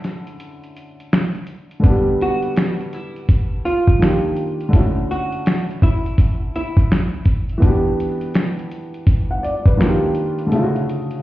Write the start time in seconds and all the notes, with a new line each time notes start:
Already playing: D3 A3 C#4 E4 F#4
0.04 snare, closed hi-hat
0.27 closed hi-hat
0.40 closed hi-hat
0.64 closed hi-hat
0.77 closed hi-hat
1.00 closed hi-hat
1.13 finger snap, snare, closed hi-hat
1.35 closed hi-hat
1.47 closed hi-hat
1.71 closed hi-hat
1.80 D3 B3
1.84 D4, kick, closed hi-hat
1.90 G3
2.21 F#4, closed hi-hat
2.42 closed hi-hat
2.56 finger snap, snare, closed hi-hat
2.81 closed hi-hat
2.93 E4, closed hi-hat
3.16 closed hi-hat
3.29 kick, closed hi-hat
3.65 F4, closed hi-hat
3.87 kick, closed hi-hat
3.99 D#3 A#3 D4, snare, closed hi-hat
4.03 F4 G4, finger snap
4.36 closed hi-hat
4.61 closed hi-hat
4.69 D3 A3
4.73 C#4 E4, kick, closed hi-hat
4.79 F#4
5.11 F#4, closed hi-hat
5.32 closed hi-hat
5.46 finger snap, snare, closed hi-hat
5.71 closed hi-hat
5.82 E4, kick, closed hi-hat
6.06 closed hi-hat
6.18 kick, closed hi-hat
6.55 E4, closed hi-hat
6.77 kick, closed hi-hat
6.92 finger snap, snare, closed hi-hat
7.25 kick, closed hi-hat
7.49 closed hi-hat
7.58 E3 B3
7.62 D4 F#4, kick, closed hi-hat
7.68 G4
8.00 closed hi-hat
8.21 closed hi-hat
8.34 finger snap, snare, closed hi-hat
8.59 closed hi-hat
8.71 closed hi-hat
8.94 closed hi-hat
9.07 kick, closed hi-hat
9.31 F#5
9.43 D5, closed hi-hat
9.66 B4, kick, closed hi-hat
9.77 D#3 A#3 D4 F4, snare, closed hi-hat
9.82 F#4, finger snap
9.88 G4
10.15 closed hi-hat
10.39 closed hi-hat
10.47 D3 A3
10.52 C#3 E4, closed hi-hat
10.56 F4
10.63 F#4
10.76 closed hi-hat
10.89 closed hi-hat
11.11 closed hi-hat